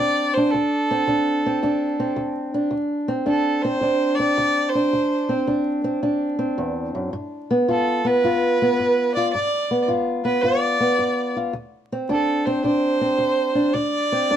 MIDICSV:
0, 0, Header, 1, 3, 480
1, 0, Start_track
1, 0, Tempo, 551978
1, 447, Time_signature, 4, 2, 24, 8
1, 12493, End_track
2, 0, Start_track
2, 0, Title_t, "Fiddle"
2, 0, Program_c, 0, 110
2, 0, Note_on_c, 0, 74, 106
2, 295, Note_on_c, 0, 72, 89
2, 309, Note_off_c, 0, 74, 0
2, 449, Note_on_c, 0, 69, 94
2, 462, Note_off_c, 0, 72, 0
2, 1888, Note_off_c, 0, 69, 0
2, 2855, Note_on_c, 0, 69, 84
2, 3149, Note_on_c, 0, 72, 98
2, 3162, Note_off_c, 0, 69, 0
2, 3614, Note_on_c, 0, 74, 103
2, 3627, Note_off_c, 0, 72, 0
2, 4081, Note_on_c, 0, 72, 88
2, 4094, Note_off_c, 0, 74, 0
2, 4741, Note_off_c, 0, 72, 0
2, 6707, Note_on_c, 0, 69, 81
2, 7007, Note_on_c, 0, 71, 97
2, 7020, Note_off_c, 0, 69, 0
2, 7950, Note_off_c, 0, 71, 0
2, 7955, Note_on_c, 0, 74, 91
2, 8105, Note_off_c, 0, 74, 0
2, 8114, Note_on_c, 0, 74, 99
2, 8563, Note_off_c, 0, 74, 0
2, 8911, Note_on_c, 0, 71, 89
2, 9056, Note_on_c, 0, 74, 107
2, 9069, Note_off_c, 0, 71, 0
2, 9870, Note_off_c, 0, 74, 0
2, 10531, Note_on_c, 0, 69, 75
2, 10833, Note_on_c, 0, 72, 82
2, 10846, Note_off_c, 0, 69, 0
2, 10992, Note_off_c, 0, 72, 0
2, 10997, Note_on_c, 0, 72, 102
2, 11945, Note_on_c, 0, 74, 107
2, 11958, Note_off_c, 0, 72, 0
2, 12493, Note_off_c, 0, 74, 0
2, 12493, End_track
3, 0, Start_track
3, 0, Title_t, "Steel-string acoustic guitar"
3, 0, Program_c, 1, 25
3, 0, Note_on_c, 1, 38, 73
3, 0, Note_on_c, 1, 60, 55
3, 0, Note_on_c, 1, 62, 53
3, 321, Note_off_c, 1, 62, 0
3, 324, Note_on_c, 1, 62, 59
3, 428, Note_off_c, 1, 38, 0
3, 469, Note_on_c, 1, 38, 73
3, 495, Note_off_c, 1, 60, 0
3, 790, Note_on_c, 1, 60, 59
3, 816, Note_off_c, 1, 62, 0
3, 906, Note_off_c, 1, 38, 0
3, 932, Note_on_c, 1, 38, 73
3, 939, Note_on_c, 1, 62, 61
3, 1267, Note_off_c, 1, 60, 0
3, 1271, Note_on_c, 1, 60, 57
3, 1378, Note_off_c, 1, 38, 0
3, 1414, Note_on_c, 1, 38, 70
3, 1415, Note_off_c, 1, 62, 0
3, 1419, Note_on_c, 1, 62, 59
3, 1732, Note_off_c, 1, 60, 0
3, 1736, Note_on_c, 1, 60, 57
3, 1859, Note_off_c, 1, 38, 0
3, 1882, Note_on_c, 1, 38, 76
3, 2208, Note_off_c, 1, 62, 0
3, 2211, Note_on_c, 1, 62, 58
3, 2333, Note_off_c, 1, 38, 0
3, 2353, Note_on_c, 1, 38, 74
3, 2379, Note_off_c, 1, 60, 0
3, 2679, Note_on_c, 1, 60, 61
3, 2705, Note_off_c, 1, 62, 0
3, 2808, Note_off_c, 1, 38, 0
3, 2833, Note_on_c, 1, 38, 71
3, 2837, Note_on_c, 1, 62, 60
3, 3167, Note_off_c, 1, 60, 0
3, 3170, Note_on_c, 1, 60, 61
3, 3288, Note_off_c, 1, 38, 0
3, 3315, Note_on_c, 1, 38, 70
3, 3321, Note_off_c, 1, 62, 0
3, 3325, Note_on_c, 1, 62, 58
3, 3637, Note_off_c, 1, 60, 0
3, 3647, Note_on_c, 1, 60, 57
3, 3768, Note_off_c, 1, 38, 0
3, 3805, Note_on_c, 1, 38, 78
3, 4129, Note_off_c, 1, 62, 0
3, 4132, Note_on_c, 1, 62, 58
3, 4253, Note_off_c, 1, 38, 0
3, 4265, Note_off_c, 1, 60, 0
3, 4287, Note_on_c, 1, 38, 73
3, 4601, Note_on_c, 1, 60, 58
3, 4627, Note_off_c, 1, 62, 0
3, 4733, Note_off_c, 1, 38, 0
3, 4760, Note_on_c, 1, 38, 72
3, 4762, Note_on_c, 1, 62, 57
3, 5070, Note_off_c, 1, 60, 0
3, 5080, Note_on_c, 1, 60, 56
3, 5210, Note_off_c, 1, 38, 0
3, 5238, Note_off_c, 1, 62, 0
3, 5240, Note_on_c, 1, 38, 72
3, 5242, Note_on_c, 1, 62, 55
3, 5544, Note_off_c, 1, 60, 0
3, 5554, Note_on_c, 1, 60, 55
3, 5690, Note_off_c, 1, 38, 0
3, 5719, Note_on_c, 1, 40, 60
3, 6038, Note_off_c, 1, 40, 0
3, 6042, Note_on_c, 1, 42, 60
3, 6177, Note_off_c, 1, 60, 0
3, 6196, Note_off_c, 1, 42, 0
3, 6200, Note_on_c, 1, 43, 75
3, 6527, Note_on_c, 1, 59, 58
3, 6648, Note_off_c, 1, 43, 0
3, 6678, Note_off_c, 1, 62, 0
3, 6682, Note_on_c, 1, 65, 61
3, 6683, Note_on_c, 1, 43, 72
3, 6994, Note_off_c, 1, 59, 0
3, 6997, Note_on_c, 1, 59, 59
3, 7130, Note_off_c, 1, 43, 0
3, 7160, Note_on_c, 1, 43, 69
3, 7166, Note_off_c, 1, 65, 0
3, 7170, Note_on_c, 1, 65, 60
3, 7479, Note_off_c, 1, 59, 0
3, 7495, Note_on_c, 1, 59, 56
3, 7608, Note_off_c, 1, 43, 0
3, 7645, Note_on_c, 1, 43, 71
3, 7962, Note_off_c, 1, 65, 0
3, 7972, Note_on_c, 1, 65, 59
3, 8091, Note_off_c, 1, 43, 0
3, 8106, Note_off_c, 1, 65, 0
3, 8107, Note_off_c, 1, 59, 0
3, 8125, Note_on_c, 1, 43, 78
3, 8442, Note_on_c, 1, 59, 59
3, 8571, Note_off_c, 1, 43, 0
3, 8592, Note_on_c, 1, 43, 71
3, 8597, Note_on_c, 1, 65, 58
3, 8900, Note_off_c, 1, 59, 0
3, 8911, Note_on_c, 1, 59, 61
3, 9044, Note_off_c, 1, 43, 0
3, 9068, Note_on_c, 1, 43, 73
3, 9070, Note_off_c, 1, 65, 0
3, 9080, Note_on_c, 1, 65, 59
3, 9385, Note_off_c, 1, 59, 0
3, 9395, Note_on_c, 1, 59, 61
3, 9522, Note_off_c, 1, 43, 0
3, 9554, Note_on_c, 1, 43, 76
3, 9873, Note_off_c, 1, 65, 0
3, 9883, Note_on_c, 1, 65, 59
3, 10006, Note_off_c, 1, 43, 0
3, 10018, Note_off_c, 1, 59, 0
3, 10022, Note_off_c, 1, 65, 0
3, 10029, Note_on_c, 1, 38, 74
3, 10369, Note_on_c, 1, 60, 60
3, 10483, Note_off_c, 1, 38, 0
3, 10513, Note_on_c, 1, 38, 74
3, 10518, Note_on_c, 1, 62, 58
3, 10839, Note_off_c, 1, 60, 0
3, 10842, Note_on_c, 1, 60, 57
3, 10966, Note_off_c, 1, 38, 0
3, 10991, Note_on_c, 1, 38, 69
3, 10994, Note_off_c, 1, 62, 0
3, 10998, Note_on_c, 1, 62, 57
3, 11306, Note_off_c, 1, 60, 0
3, 11316, Note_on_c, 1, 60, 55
3, 11446, Note_off_c, 1, 38, 0
3, 11465, Note_on_c, 1, 38, 72
3, 11774, Note_off_c, 1, 62, 0
3, 11785, Note_on_c, 1, 62, 57
3, 11924, Note_off_c, 1, 38, 0
3, 11935, Note_off_c, 1, 62, 0
3, 11941, Note_off_c, 1, 60, 0
3, 11950, Note_on_c, 1, 38, 77
3, 12280, Note_on_c, 1, 60, 58
3, 12407, Note_off_c, 1, 38, 0
3, 12441, Note_on_c, 1, 38, 73
3, 12445, Note_on_c, 1, 62, 58
3, 12493, Note_off_c, 1, 38, 0
3, 12493, Note_off_c, 1, 60, 0
3, 12493, Note_off_c, 1, 62, 0
3, 12493, End_track
0, 0, End_of_file